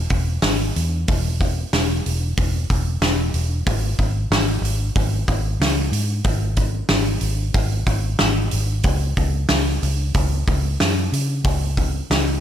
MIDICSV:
0, 0, Header, 1, 3, 480
1, 0, Start_track
1, 0, Tempo, 648649
1, 796, Time_signature, 4, 2, 24, 8
1, 9177, End_track
2, 0, Start_track
2, 0, Title_t, "Fingered electric bass"
2, 0, Program_c, 0, 33
2, 76, Note_on_c, 0, 28, 94
2, 281, Note_off_c, 0, 28, 0
2, 313, Note_on_c, 0, 32, 90
2, 519, Note_off_c, 0, 32, 0
2, 565, Note_on_c, 0, 40, 86
2, 766, Note_off_c, 0, 40, 0
2, 799, Note_on_c, 0, 28, 85
2, 1206, Note_off_c, 0, 28, 0
2, 1280, Note_on_c, 0, 28, 81
2, 1482, Note_off_c, 0, 28, 0
2, 1527, Note_on_c, 0, 28, 82
2, 1726, Note_off_c, 0, 28, 0
2, 1757, Note_on_c, 0, 28, 87
2, 1960, Note_off_c, 0, 28, 0
2, 1999, Note_on_c, 0, 28, 83
2, 2201, Note_off_c, 0, 28, 0
2, 2231, Note_on_c, 0, 28, 90
2, 2437, Note_off_c, 0, 28, 0
2, 2472, Note_on_c, 0, 28, 93
2, 2677, Note_off_c, 0, 28, 0
2, 2710, Note_on_c, 0, 32, 92
2, 2916, Note_off_c, 0, 32, 0
2, 2953, Note_on_c, 0, 32, 85
2, 3158, Note_off_c, 0, 32, 0
2, 3187, Note_on_c, 0, 32, 77
2, 3394, Note_off_c, 0, 32, 0
2, 3415, Note_on_c, 0, 32, 87
2, 3627, Note_off_c, 0, 32, 0
2, 3670, Note_on_c, 0, 32, 88
2, 3876, Note_off_c, 0, 32, 0
2, 3906, Note_on_c, 0, 32, 86
2, 4113, Note_off_c, 0, 32, 0
2, 4143, Note_on_c, 0, 37, 92
2, 4352, Note_off_c, 0, 37, 0
2, 4378, Note_on_c, 0, 44, 88
2, 4589, Note_off_c, 0, 44, 0
2, 4623, Note_on_c, 0, 32, 87
2, 5037, Note_off_c, 0, 32, 0
2, 5101, Note_on_c, 0, 32, 84
2, 5311, Note_off_c, 0, 32, 0
2, 5338, Note_on_c, 0, 32, 81
2, 5549, Note_off_c, 0, 32, 0
2, 5584, Note_on_c, 0, 32, 80
2, 5793, Note_off_c, 0, 32, 0
2, 5821, Note_on_c, 0, 32, 87
2, 6031, Note_off_c, 0, 32, 0
2, 6074, Note_on_c, 0, 32, 89
2, 6279, Note_off_c, 0, 32, 0
2, 6309, Note_on_c, 0, 32, 91
2, 6516, Note_off_c, 0, 32, 0
2, 6548, Note_on_c, 0, 37, 93
2, 6755, Note_off_c, 0, 37, 0
2, 6786, Note_on_c, 0, 37, 87
2, 6995, Note_off_c, 0, 37, 0
2, 7027, Note_on_c, 0, 37, 84
2, 7235, Note_off_c, 0, 37, 0
2, 7272, Note_on_c, 0, 37, 87
2, 7478, Note_off_c, 0, 37, 0
2, 7511, Note_on_c, 0, 37, 92
2, 7717, Note_off_c, 0, 37, 0
2, 7756, Note_on_c, 0, 37, 91
2, 7960, Note_off_c, 0, 37, 0
2, 7996, Note_on_c, 0, 42, 87
2, 8201, Note_off_c, 0, 42, 0
2, 8231, Note_on_c, 0, 49, 87
2, 8438, Note_off_c, 0, 49, 0
2, 8466, Note_on_c, 0, 37, 90
2, 8879, Note_off_c, 0, 37, 0
2, 8955, Note_on_c, 0, 37, 76
2, 9161, Note_off_c, 0, 37, 0
2, 9177, End_track
3, 0, Start_track
3, 0, Title_t, "Drums"
3, 72, Note_on_c, 9, 46, 54
3, 77, Note_on_c, 9, 36, 78
3, 146, Note_off_c, 9, 46, 0
3, 151, Note_off_c, 9, 36, 0
3, 313, Note_on_c, 9, 38, 116
3, 313, Note_on_c, 9, 46, 83
3, 387, Note_off_c, 9, 38, 0
3, 387, Note_off_c, 9, 46, 0
3, 564, Note_on_c, 9, 46, 59
3, 638, Note_off_c, 9, 46, 0
3, 799, Note_on_c, 9, 46, 75
3, 802, Note_on_c, 9, 36, 110
3, 873, Note_off_c, 9, 46, 0
3, 876, Note_off_c, 9, 36, 0
3, 1041, Note_on_c, 9, 36, 74
3, 1044, Note_on_c, 9, 46, 55
3, 1115, Note_off_c, 9, 36, 0
3, 1118, Note_off_c, 9, 46, 0
3, 1281, Note_on_c, 9, 38, 122
3, 1281, Note_on_c, 9, 46, 84
3, 1355, Note_off_c, 9, 38, 0
3, 1355, Note_off_c, 9, 46, 0
3, 1524, Note_on_c, 9, 46, 55
3, 1598, Note_off_c, 9, 46, 0
3, 1759, Note_on_c, 9, 36, 103
3, 1760, Note_on_c, 9, 46, 74
3, 1833, Note_off_c, 9, 36, 0
3, 1834, Note_off_c, 9, 46, 0
3, 1999, Note_on_c, 9, 36, 86
3, 2000, Note_on_c, 9, 46, 55
3, 2073, Note_off_c, 9, 36, 0
3, 2074, Note_off_c, 9, 46, 0
3, 2234, Note_on_c, 9, 38, 117
3, 2234, Note_on_c, 9, 46, 79
3, 2308, Note_off_c, 9, 38, 0
3, 2308, Note_off_c, 9, 46, 0
3, 2471, Note_on_c, 9, 46, 55
3, 2545, Note_off_c, 9, 46, 0
3, 2714, Note_on_c, 9, 36, 114
3, 2715, Note_on_c, 9, 46, 74
3, 2788, Note_off_c, 9, 36, 0
3, 2789, Note_off_c, 9, 46, 0
3, 2951, Note_on_c, 9, 36, 73
3, 2951, Note_on_c, 9, 46, 48
3, 3025, Note_off_c, 9, 36, 0
3, 3025, Note_off_c, 9, 46, 0
3, 3195, Note_on_c, 9, 38, 122
3, 3195, Note_on_c, 9, 46, 77
3, 3269, Note_off_c, 9, 38, 0
3, 3269, Note_off_c, 9, 46, 0
3, 3439, Note_on_c, 9, 46, 54
3, 3513, Note_off_c, 9, 46, 0
3, 3669, Note_on_c, 9, 36, 101
3, 3671, Note_on_c, 9, 46, 74
3, 3743, Note_off_c, 9, 36, 0
3, 3745, Note_off_c, 9, 46, 0
3, 3908, Note_on_c, 9, 36, 81
3, 3912, Note_on_c, 9, 46, 51
3, 3982, Note_off_c, 9, 36, 0
3, 3986, Note_off_c, 9, 46, 0
3, 4156, Note_on_c, 9, 38, 118
3, 4156, Note_on_c, 9, 46, 82
3, 4230, Note_off_c, 9, 38, 0
3, 4230, Note_off_c, 9, 46, 0
3, 4387, Note_on_c, 9, 46, 61
3, 4461, Note_off_c, 9, 46, 0
3, 4620, Note_on_c, 9, 46, 75
3, 4623, Note_on_c, 9, 36, 112
3, 4694, Note_off_c, 9, 46, 0
3, 4697, Note_off_c, 9, 36, 0
3, 4858, Note_on_c, 9, 46, 56
3, 4863, Note_on_c, 9, 36, 80
3, 4932, Note_off_c, 9, 46, 0
3, 4937, Note_off_c, 9, 36, 0
3, 5097, Note_on_c, 9, 38, 125
3, 5097, Note_on_c, 9, 46, 82
3, 5171, Note_off_c, 9, 38, 0
3, 5171, Note_off_c, 9, 46, 0
3, 5333, Note_on_c, 9, 46, 56
3, 5407, Note_off_c, 9, 46, 0
3, 5581, Note_on_c, 9, 46, 74
3, 5583, Note_on_c, 9, 36, 107
3, 5655, Note_off_c, 9, 46, 0
3, 5657, Note_off_c, 9, 36, 0
3, 5820, Note_on_c, 9, 46, 59
3, 5822, Note_on_c, 9, 36, 82
3, 5894, Note_off_c, 9, 46, 0
3, 5896, Note_off_c, 9, 36, 0
3, 6060, Note_on_c, 9, 38, 126
3, 6060, Note_on_c, 9, 46, 83
3, 6134, Note_off_c, 9, 38, 0
3, 6134, Note_off_c, 9, 46, 0
3, 6299, Note_on_c, 9, 46, 61
3, 6373, Note_off_c, 9, 46, 0
3, 6538, Note_on_c, 9, 46, 76
3, 6544, Note_on_c, 9, 36, 106
3, 6612, Note_off_c, 9, 46, 0
3, 6618, Note_off_c, 9, 36, 0
3, 6784, Note_on_c, 9, 46, 56
3, 6787, Note_on_c, 9, 36, 78
3, 6858, Note_off_c, 9, 46, 0
3, 6861, Note_off_c, 9, 36, 0
3, 7020, Note_on_c, 9, 38, 120
3, 7020, Note_on_c, 9, 46, 72
3, 7094, Note_off_c, 9, 38, 0
3, 7094, Note_off_c, 9, 46, 0
3, 7273, Note_on_c, 9, 46, 48
3, 7347, Note_off_c, 9, 46, 0
3, 7506, Note_on_c, 9, 46, 68
3, 7509, Note_on_c, 9, 36, 110
3, 7580, Note_off_c, 9, 46, 0
3, 7583, Note_off_c, 9, 36, 0
3, 7752, Note_on_c, 9, 36, 84
3, 7754, Note_on_c, 9, 46, 56
3, 7826, Note_off_c, 9, 36, 0
3, 7828, Note_off_c, 9, 46, 0
3, 7994, Note_on_c, 9, 38, 113
3, 7994, Note_on_c, 9, 46, 83
3, 8068, Note_off_c, 9, 38, 0
3, 8068, Note_off_c, 9, 46, 0
3, 8239, Note_on_c, 9, 46, 57
3, 8313, Note_off_c, 9, 46, 0
3, 8469, Note_on_c, 9, 46, 77
3, 8471, Note_on_c, 9, 36, 116
3, 8543, Note_off_c, 9, 46, 0
3, 8545, Note_off_c, 9, 36, 0
3, 8712, Note_on_c, 9, 36, 72
3, 8715, Note_on_c, 9, 46, 54
3, 8786, Note_off_c, 9, 36, 0
3, 8789, Note_off_c, 9, 46, 0
3, 8960, Note_on_c, 9, 38, 123
3, 8960, Note_on_c, 9, 46, 77
3, 9034, Note_off_c, 9, 38, 0
3, 9034, Note_off_c, 9, 46, 0
3, 9177, End_track
0, 0, End_of_file